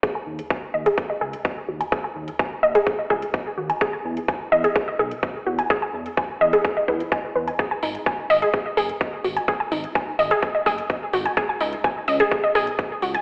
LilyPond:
<<
  \new Staff \with { instrumentName = "Synth pluck" } { \time 4/4 \key dis \phrygian \tempo 4 = 127 gis'16 gis''16 r8 gis''16 r16 dis''16 gis'16 gis'16 dis''16 gis'16 r8. fis'16 gis''16 | gis'16 gis''16 r8 gis''16 r16 dis''16 gis'16 gis'16 dis''16 gis'16 r8. fis'16 gis''16 | gis'16 gis''16 r8 gis''16 r16 dis''16 gis'16 gis'16 dis''16 gis'16 r8. fis'16 gis''16 | gis'16 gis''16 r8 gis''16 r16 dis''16 gis'16 gis'16 dis''16 b'16 r16 gis''16 r16 b'16 gis''16 |
gis'16 gis''16 dis'16 r16 gis''16 r16 dis''16 gis'16 gis'16 dis''16 gis'16 r8. fis'16 gis''16 | gis'16 gis''16 dis'16 r16 gis''16 r16 dis''16 gis'16 gis'16 dis''16 gis'16 r8. fis'16 gis''16 | gis'16 gis''16 dis'16 r16 gis''16 r16 dis''16 gis'16 gis'16 dis''16 gis'16 r8. fis'16 gis''16 | }
  \new Staff \with { instrumentName = "Analog synth bass" } { \clef bass \time 4/4 \key dis \phrygian r8 dis,8 r8 dis,8 r8 cis,8 r8 dis,8 | r8 dis,8 r8 dis,8 r8 cis,8 r8 dis,8 | r8 e,8 r8 e,8 r8 b,,8 r8 e,8 | r8 e,8 r8 e,8 r8 e,8 r8 e,8 |
r8 gis,,8 r8 gis,,8 r8 fis,,8 r8 gis,,8 | r8 gis,,8 r8 gis,,8 r8 fis,,8 r8 gis,,8 | r8 cis,8 r8 cis,8 r8 b,,8 r8 cis,8 | }
  \new DrumStaff \with { instrumentName = "Drums" } \drummode { \time 4/4 <hh bd>8. hh16 <hh bd>8. hh16 <hh bd>8. hh16 <hh bd>8. hh16 | <hh bd>8. hh16 <hh bd>8. hh16 <hh bd>8 bd16 hh16 <hh bd>8. hh16 | <hh bd>8. hh16 <hh bd>8. hh16 <hh bd>8. hh16 <hh bd>8. hh16 | <hh bd>8. hh16 <hh bd>8. hh16 <hh bd>8 bd16 hh16 <hh bd>8. hh16 |
<hh bd>8 hho16 hh16 <hh bd>8 hho16 hh16 <hh bd>8 hho16 hh16 <hh bd>8 hho16 hh16 | <hh bd>8 hho16 hh16 <hh bd>8 hho16 hh16 <hh bd>8 <hho bd>16 hh16 <hh bd>8 hho16 hh16 | <hh bd>8 hho16 hh16 <hh bd>8 hho16 hh16 <hh bd>8 hho16 hh16 <hh bd>8 hho16 hh16 | }
>>